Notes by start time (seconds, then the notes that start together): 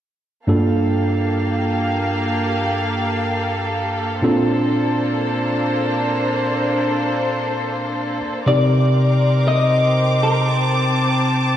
0.47 G2 A#3 D4 F4 G4 A4 F5
4.22 A#2 A#3 C4 D4 F4 A4 C5
8.46 C3 C4 D#4 G4 A#4 D5 D6
9.48 D#5
10.23 A#4
10.47 A5